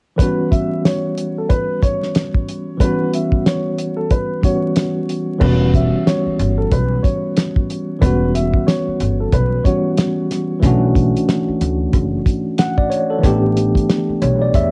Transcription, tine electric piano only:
0.16 2.75 E3 medium
0.16 2.75 G3 medium
0.16 2.76 B3 medium
0.22 2.77 C#4 medium
0.22 2.78 F#4 medium
2.77 4.38 E3 medium
2.77 4.39 G3 medium
2.77 4.40 B3 medium
2.83 4.41 C#4 medium
2.83 4.42 F#4 medium
4.41 5.37 E3 soft
4.41 5.39 G3 soft
4.41 5.40 B3 soft
4.41 5.41 C#4 soft
4.41 5.42 F#4 medium
5.38 7.96 E3 medium
5.38 7.97 G3 medium
5.38 7.98 B3 medium
5.43 7.99 C#4 medium
5.43 8.00 F#4 medium
7.99 9.60 E3 medium
7.99 9.61 G3 medium
7.99 9.62 B3 medium
8.04 9.63 C#4 medium
8.04 9.64 F#4 medium
9.63 10.59 E3 soft
9.63 10.62 G3 soft
9.63 10.63 B3 soft
9.63 10.62 C#4 soft
9.63 10.64 F#4 medium
10.60 13.17 E3 medium
10.60 13.19 A3 medium
10.60 13.20 C#4 medium
10.65 13.21 D4 medium
10.65 13.22 F#4 medium
12.59 12.77 F#5 medium
12.78 12.90 D5 medium
12.90 13.09 C#5 medium
13.10 13.41 A4 medium
13.19 14.71 E3 medium
13.19 14.71 A3 medium
13.19 14.71 B3 medium
13.24 14.71 D4 medium
13.24 14.71 G4 medium
14.22 14.40 C#5 medium
14.42 14.53 D5 medium
14.55 14.71 E5 medium

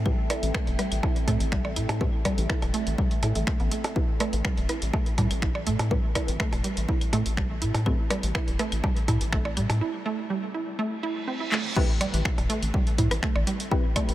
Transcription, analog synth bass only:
0.00 0.13 A2 medium
0.43 0.52 A1 loud
0.67 0.76 E1 medium
0.92 1.01 A1 medium
1.28 1.38 A2 medium
1.40 1.78 A1 medium
1.76 1.86 A2 medium
1.89 2.08 A2 medium
2.38 2.47 A1 loud
2.62 2.71 E1 medium
2.87 2.96 A1 medium
3.23 3.33 A2 medium
3.36 3.45 A1 medium
3.60 3.69 A1 loud
4.33 4.42 A1 loud
4.58 4.66 E1 medium
4.82 4.91 A1 medium
5.18 5.28 A2 medium
5.31 5.68 A1 medium
5.67 5.77 A2 medium
5.79 5.98 A2 medium
6.28 6.37 A1 loud
6.53 6.62 E1 medium
6.77 6.86 A1 medium
7.13 7.23 A2 medium
7.26 7.63 A1 medium
7.62 7.72 A2 medium
7.75 7.93 A2 medium
8.23 8.32 A1 medium
8.48 8.57 E1 medium
8.72 8.81 A1 medium
9.08 9.18 A2 medium
9.21 9.58 A1 medium
9.57 9.67 A2 medium
9.70 9.81 A2 medium
12.14 12.23 A1 loud
12.38 12.47 E1 medium
12.62 12.71 A1 medium
12.98 13.08 A2 medium
13.11 13.20 A1 medium
13.36 13.45 A1 loud
14.09 14.14 A1 loud

